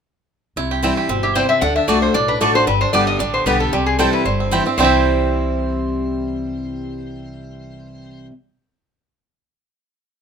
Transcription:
0.56 0.90 C2 medium
0.56 1.07 C3 medium
0.56 0.94 E4 medium
0.71 0.96 G4 medium
0.83 1.08 E3 medium
0.83 1.08 G3 medium
0.83 1.21 G3 medium
0.83 0.92 C4 medium
0.83 1.08 C4 medium
0.83 0.92 E4 medium
0.83 1.08 E4 medium
0.83 0.93 C5 loud
0.83 0.93 G5 loud
0.97 1.33 G4 medium
1.09 1.42 G1 medium
1.09 1.34 B2 medium
1.09 1.47 C4 medium
1.23 1.60 E4 soft
1.23 1.35 G4 medium
1.35 1.60 C3 medium
1.35 1.62 G3 medium
1.35 1.45 C4 medium
1.35 1.45 E4 medium
1.35 1.49 C5 medium
1.35 1.45 C5 medium
1.35 1.45 G5 medium
1.49 1.62 C4 medium
1.49 1.61 E5 medium
1.61 1.78 D2 medium
1.61 1.87 D3 medium
1.61 1.75 D4 medium
1.61 1.75 F#5 loud
1.76 2.01 D4 medium
1.76 1.87 E5 medium
1.88 2.10 C2 medium
1.88 2.13 D3 medium
1.88 1.97 A3 medium
1.88 2.26 A3 medium
1.88 2.13 A3 medium
1.88 2.14 D4 medium
1.88 1.98 F#4 loud
1.88 2.14 F#4 medium
1.88 2.02 D5 medium
1.88 1.98 D5 loud
1.88 1.98 A5 medium
2.02 2.13 D4 medium
2.02 2.14 C5 medium
2.14 2.37 B1 medium
2.14 2.65 A2 medium
2.14 2.28 D4 medium
2.14 2.28 D5 loud
2.28 2.54 D4 soft
2.28 2.40 B4 medium
2.41 2.63 A1 medium
2.41 2.54 D3 medium
2.41 2.50 A3 medium
2.41 2.54 A3 medium
2.41 2.67 A3 medium
2.41 2.55 D4 medium
2.41 2.50 F#4 medium
2.41 2.54 F#4 medium
2.41 2.54 A4 medium
2.41 2.51 D5 medium
2.41 2.51 A5 loud
2.55 2.67 D4 medium
2.55 2.67 D4 soft
2.55 2.67 F#4 medium
2.55 2.66 C5 loud
2.67 2.84 G1 medium
2.67 3.17 G2 medium
2.67 2.93 G3 medium
2.67 2.80 B4 medium
2.81 3.07 D4 medium
2.81 2.93 C5 medium
2.93 3.16 G1 medium
2.93 3.19 D3 medium
2.93 3.19 G3 medium
2.93 3.20 G3 medium
2.93 3.03 B3 medium
2.93 3.19 B3 medium
2.93 3.03 G4 medium
2.93 3.19 G4 medium
2.93 3.06 D5 medium
2.93 3.03 D5 medium
2.93 3.04 G5 loud
3.07 3.44 D4 medium
3.07 3.19 D#5 loud
3.19 3.42 A1 medium
3.19 3.45 D3 medium
3.19 3.73 G3 medium
3.19 3.33 D5 medium
3.34 3.59 B3 medium
3.34 3.46 C5 medium
3.46 3.68 B1 medium
3.46 3.71 D3 medium
3.46 3.72 G3 medium
3.46 3.56 B3 medium
3.46 3.72 B3 medium
3.46 3.56 G4 medium
3.46 4.52 G4 medium
3.46 3.72 G4 loud
3.46 3.60 B4 medium
3.46 3.56 D5 loud
3.46 3.56 G5 medium
3.60 3.73 B3 medium
3.60 3.72 A4 medium
3.73 4.23 C3 medium
3.73 3.98 G3 medium
3.73 3.86 G4 medium
3.86 3.98 G#4 medium
3.98 4.24 E3 medium
3.98 4.24 G3 medium
3.98 4.08 C4 medium
3.98 4.25 C4 medium
3.98 4.09 E4 loud
3.98 4.25 E4 loud
3.98 4.13 A4 medium
3.98 4.09 C5 loud
3.98 4.09 G5 loud
4.13 4.49 E4 medium
4.13 4.25 B4 medium
4.25 4.59 G1 medium
4.25 4.76 G2 medium
4.25 4.63 G3 medium
4.25 4.69 C5 medium
4.40 4.65 C4 medium
4.51 4.65 E3 medium
4.51 4.65 G3 medium
4.51 4.61 C4 medium
4.51 4.66 C4 medium
4.51 4.62 E4 medium
4.51 4.64 E4 medium
4.51 4.79 G4 medium
4.51 4.62 C5 medium
4.51 4.62 G5 medium
4.66 4.79 C4 medium
4.66 4.78 C4 soft
4.66 4.78 E4 medium
4.78 8.26 C2 loud
4.78 8.30 C3 medium
4.78 8.31 E3 medium
4.78 8.27 G3 medium
4.78 8.32 G3 medium
4.78 8.30 C4 medium
4.78 8.32 C4 medium
4.78 8.29 C4 medium
4.78 8.31 E4 medium
4.78 8.32 E4 medium
4.78 8.26 C5 medium
4.78 8.32 C5 medium
4.78 8.33 G5 medium
4.83 8.31 E4 medium
4.83 8.33 G4 medium

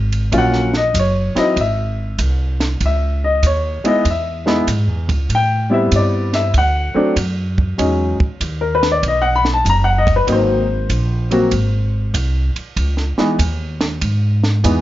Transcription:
0.00 0.30 G#1 medium
0.12 ride soft
0.32 0.92 A#1 medium
0.32 0.69 F#3 medium
0.32 0.70 A#3 medium
0.32 0.70 C#4 medium
0.32 0.70 F4 medium
0.32 kick soft
0.32 ride medium
0.38 0.76 F#5 medium
0.53 snare soft
0.74 0.95 D#5 medium
0.74 snare soft
0.94 1.33 F#1 medium
0.94 kick soft
0.94 hi-hat pedal medium
0.94 ride medium
0.99 1.37 C#5 medium
1.35 1.54 F#3 medium
1.35 1.54 C4 medium
1.35 1.55 D#4 medium
1.35 1.55 E4 medium
1.35 1.57 D#5 medium
1.35 muted upright bass stroke soft
1.35 snare soft
1.35 ride soft
1.56 2.16 G#1 medium
1.56 kick soft
1.56 ride medium
1.61 2.17 E5 medium
2.18 2.79 C2 medium
2.18 kick soft
2.18 hi-hat pedal medium
2.18 ride medium
2.60 snare medium
2.60 ride soft
2.81 3.41 C#2 medium
2.81 kick soft
2.81 ride medium
2.86 3.24 E5 medium
3.24 3.43 D#5 medium
3.42 3.81 D#2 medium
3.42 kick soft
3.42 hi-hat pedal medium
3.42 ride medium
3.46 3.85 C#5 medium
3.84 4.03 G#3 medium
3.84 4.03 B3 medium
3.84 4.03 D#4 medium
3.84 4.03 E4 medium
3.84 4.06 D#5 medium
3.84 muted upright bass stroke soft
3.84 ride soft
4.05 4.65 E2 medium
4.05 kick soft
4.05 ride medium
4.11 4.66 E5 medium
4.46 4.65 G#3 medium
4.46 4.65 B3 medium
4.46 4.65 D#4 medium
4.46 4.66 E4 medium
4.46 snare medium
4.67 4.87 G#2 medium
4.67 kick soft
4.67 hi-hat pedal medium
4.67 ride medium
4.87 5.07 E2 medium
5.08 5.27 C#2 medium
5.08 kick soft
5.08 ride soft
5.29 5.89 A2 medium
5.29 kick soft
5.29 ride medium
5.35 5.72 G5 loud
5.70 6.49 G3 medium
5.70 6.49 B3 medium
5.70 6.49 C4 medium
5.70 6.49 E4 medium
5.70 5.92 E5 medium
5.92 6.52 G2 medium
5.92 kick soft
5.92 hi-hat pedal medium
5.92 ride medium
5.96 6.34 D5 medium
6.33 6.54 E5 medium
6.33 snare soft
6.33 ride soft
6.54 6.92 D2 medium
6.54 kick soft
6.54 ride medium
6.58 7.14 F#5 medium
6.94 7.13 F#3 medium
6.94 7.13 A3 medium
6.94 7.14 C4 medium
6.94 7.14 D4 medium
6.94 muted upright bass stroke soft
7.16 7.76 F#2 medium
7.16 kick soft
7.16 hi-hat pedal medium
7.16 ride medium
7.58 kick medium
7.78 8.17 E2 medium
7.78 8.15 F#3 medium
7.78 8.16 G#3 medium
7.78 8.16 C#4 medium
7.78 8.16 D#4 medium
7.78 kick soft
7.78 ride medium
8.20 muted upright bass stroke soft
8.20 kick medium
8.40 9.01 D#2 medium
8.40 kick soft
8.40 hi-hat pedal medium
8.40 ride medium
8.61 8.81 A#4 medium
8.75 8.88 B4 loud
8.83 snare medium
8.83 ride soft
8.92 9.02 D5 medium
9.03 9.63 B1 medium
9.03 kick soft
9.03 ride medium
9.08 9.25 D#5 medium
9.22 9.43 F#5 medium
9.36 9.50 B5 loud
9.45 snare medium
9.54 9.64 A5 medium
9.65 10.25 F#1 medium
9.65 kick soft
9.65 hi-hat pedal medium
9.65 ride medium
9.70 9.87 A#5 loud
9.84 10.05 F#5 medium
9.98 10.12 D#5 medium
10.07 kick medium
10.07 ride soft
10.16 10.26 B4 medium
10.27 10.87 G#1 medium
10.27 10.65 F#3 medium
10.27 10.65 A#3 medium
10.27 10.65 C4 medium
10.27 10.66 D#4 medium
10.27 kick soft
10.27 ride medium
10.32 12.13 C5 medium
10.89 11.50 A#1 medium
10.89 kick soft
10.89 hi-hat pedal soft
10.89 ride medium
11.31 11.49 F#3 medium
11.31 11.50 A#3 medium
11.31 11.50 C4 medium
11.31 11.50 F#4 medium
11.31 ride medium
11.51 12.12 G#1 medium
11.51 kick soft
11.51 ride medium
12.14 12.53 C2 medium
12.14 kick soft
12.14 hi-hat pedal medium
12.14 ride medium
12.56 muted upright bass stroke soft
12.56 ride soft
12.76 13.15 C#2 medium
12.76 kick soft
12.76 ride medium
12.97 snare soft
13.18 13.37 E3 medium
13.18 13.37 G#3 medium
13.18 13.37 B3 medium
13.18 13.38 D#4 medium
13.18 snare soft
13.39 13.99 D#2 medium
13.39 kick soft
13.39 hi-hat pedal medium
13.39 ride medium
13.81 snare medium
13.81 ride soft
14.01 14.62 G#2 medium
14.01 kick soft
14.01 ride medium
14.43 snare medium
14.64 14.81 E2 medium
14.64 14.81 E3 medium
14.64 14.81 G#3 medium
14.64 14.81 B3 medium
14.64 14.81 D#4 medium
14.64 kick soft
14.64 hi-hat pedal medium
14.64 ride medium

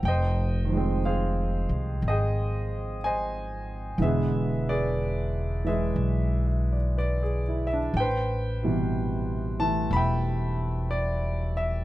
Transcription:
0.03 1.64 F1 medium
0.03 0.99 G5 medium
0.08 1.04 C5 medium
0.08 1.99 D#5 medium
0.65 3.95 D#3 soft
0.69 3.98 F3 soft
0.69 3.99 G#3 soft
0.77 4.02 C4 medium
1.05 2.08 G#4 soft
1.05 2.97 C5 medium
1.05 1.98 F5 medium
1.69 1.99 C2 medium
2.02 3.95 G#1 medium
2.08 3.98 G#4 medium
2.08 3.05 D#5 medium
2.08 3.98 G5 medium
3.04 3.97 C5 medium
3.04 3.97 D#5 medium
3.04 3.96 G#5 medium
3.98 5.92 E1 medium
3.98 7.93 D3 soft
3.98 5.63 E3 soft
3.98 5.66 G#3 soft
3.98 7.95 B3 medium
4.02 4.68 G#4 medium
4.02 4.68 B4 medium
4.02 4.69 E5 medium
4.69 5.67 G#4 soft
4.69 5.66 B4 soft
4.69 5.62 D5 medium
5.65 7.94 E3 soft
5.65 7.96 G#3 soft
5.65 7.21 G#4 soft
5.65 6.96 B4 soft
5.65 6.46 E5 medium
5.96 7.89 B1 medium
6.47 6.77 E5 soft
6.73 6.97 D5 soft
6.97 7.43 B4 soft
6.97 7.65 D5 medium
7.23 7.64 G#4 soft
7.48 7.77 E4 soft
7.67 7.97 E5 medium
7.73 8.06 D4 soft
7.94 9.87 A1 medium
7.94 9.57 G5 medium
8.00 9.90 B4 medium
8.00 9.91 C5 medium
8.63 11.84 B2 soft
8.63 11.84 C3 soft
8.63 9.58 E3 soft
8.63 11.84 G3 soft
9.60 11.84 E3 soft
9.60 11.84 A3 soft
9.60 9.89 A5 medium
9.91 11.84 E1 medium
9.91 10.87 B5 medium
9.96 11.55 E5 medium
9.96 11.84 G5 medium
10.91 11.53 D5 medium
11.57 11.84 E5 medium

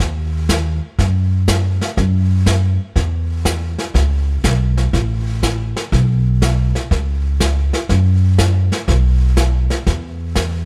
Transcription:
0.00 0.78 D#2 medium
0.00 brush sweep medium
0.00 kick soft
0.00 snare soft
0.49 kick soft
0.49 snare medium
0.49 hi-hat pedal medium
0.99 1.77 F#2 medium
0.99 brush sweep medium
0.99 kick soft
0.99 snare soft
1.48 kick soft
1.48 snare medium
1.48 hi-hat pedal medium
1.81 snare soft
1.97 2.76 F#2 medium
1.97 brush sweep soft
1.97 kick soft
1.97 snare soft
2.46 kick soft
2.46 snare medium
2.46 hi-hat pedal medium
2.96 3.75 E2 medium
2.96 brush sweep soft
2.96 kick soft
2.96 snare soft
3.45 kick soft
3.45 snare medium
3.45 hi-hat pedal medium
3.78 snare soft
3.94 4.36 C#2 medium
3.94 brush sweep soft
3.94 kick soft
3.94 snare soft
4.44 4.86 B1 medium
4.44 kick soft
4.44 snare medium
4.44 hi-hat pedal medium
4.77 snare soft
4.93 5.72 A1 medium
4.93 brush sweep medium
4.93 kick soft
4.93 snare soft
5.43 kick soft
5.43 snare medium
5.43 hi-hat pedal medium
5.76 snare soft
5.92 6.71 B1 medium
5.92 brush sweep soft
5.92 kick soft
5.92 snare soft
6.42 kick soft
6.42 snare medium
6.42 hi-hat pedal medium
6.75 snare soft
6.91 7.70 C#2 medium
6.91 brush sweep medium
6.91 kick soft
6.91 snare soft
7.40 kick soft
7.40 snare medium
7.40 hi-hat pedal medium
7.73 snare soft
7.89 8.68 F#2 medium
7.89 brush sweep soft
7.89 kick soft
7.89 snare soft
8.38 kick soft
8.38 snare medium
8.38 hi-hat pedal medium
8.72 snare soft
8.88 9.67 B1 medium
8.88 brush sweep soft
8.88 kick soft
8.88 snare soft
9.37 kick soft
9.37 snare medium
9.37 hi-hat pedal medium
9.70 snare soft
9.86 10.65 E2 medium
9.86 brush sweep soft
9.86 kick soft
9.86 snare soft
10.36 kick soft
10.36 snare medium
10.36 hi-hat pedal soft

